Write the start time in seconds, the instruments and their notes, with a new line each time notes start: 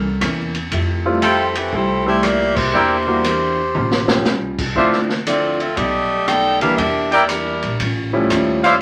Already playing: upright bass C2, saxophone section A4 A#4
0.21 upright bass E2, hollow-body jazz guitar C3 E3 A#3 C#4, cross-stick, hi-hat pedal, ride
0.55 ride
0.71 upright bass F2, hollow-body jazz guitar F3 A3 E4 G4, kick, ride
1.05 grand piano G3 A3 C4 E4 F4
1.22 hollow-body jazz guitar F3 A3 E4 G4, saxophone section G3 C4 E4 A4, trumpet section F4 A4 E5 G5, hi-hat pedal, ride
1.55 saxophone section E3 A3 C4 G4, ride
1.72 upright bass C2, hollow-body jazz guitar F3 A3 E4 G4, saxophone section G3 C4 E4 A4, kick
2.06 grand piano G3 A3 C4 E4 G4, saxophone section A3 E4 G4 C5
2.23 hollow-body jazz guitar F3 A3 E4 G4, saxophone section A#3 E4 G4 D5, cross-stick, hi-hat pedal, ride
2.56 saxophone section A#3 E4 G4 C5, kick, crash
2.73 upright bass E2, hollow-body jazz guitar E3 A#3 D4 G4, trumpet section E4 A#4 D5 G5
3.07 grand piano G3 A#3 D4 E4 F#4
3.24 hollow-body jazz guitar E3 A#3 D4 G4, hi-hat pedal, ride
3.75 upright bass A1, hollow-body jazz guitar A2 G3 C#4 F4, high tom
3.91 snare
4.08 grand piano F3 A3 C4 C#4 G4, snare
4.25 upright bass C2, hollow-body jazz guitar A2 G3 C#4 F4, snare, hi-hat pedal
4.58 kick, crash
4.75 upright bass D2, hollow-body jazz guitar D3 F3 C4 E4, grand piano F3 A3 C4 D4 E4, trumpet section D4 F4 C5 E5, kick
4.92 snare
5.09 snare
5.26 hollow-body jazz guitar D3 F3 C4 E4, saxophone section C4 F4 A4 D5, hi-hat pedal, ride
5.60 saxophone section C4 F4 A4 E5, ride
5.76 upright bass B1, hollow-body jazz guitar B2 G3 A3 D#4, saxophone section A3 G4 D5 D#5, kick, ride
6.28 hollow-body jazz guitar B2 G3 A3 D#4, saxophone section D#4 A4 D5 G5, cross-stick, hi-hat pedal, ride
6.61 grand piano E3 G3 A#3 D4 E4, saxophone section D4 G4 B4 F5, ride
6.77 upright bass E2, hollow-body jazz guitar E3 A#3 D4 G4, saxophone section D4 G4 A#4 E5, kick, ride
7.11 saxophone section A#3 E4 G4 D5, trumpet section E4 A#4 D5 G5, ride
7.28 hollow-body jazz guitar E3 A#3 D4 G4, saxophone section G3 D4 E4 A#4, hi-hat pedal, ride
7.62 upright bass A#1, ride
7.79 upright bass A1, hollow-body jazz guitar A2 G3 C#4 F4, kick, ride
8.13 grand piano F3 G3 A3 C#4 E4
8.30 upright bass D#2, hollow-body jazz guitar A2 G3 C#4 F4, cross-stick, hi-hat pedal, ride
8.64 trumpet section E4 C5 D5 F5, ride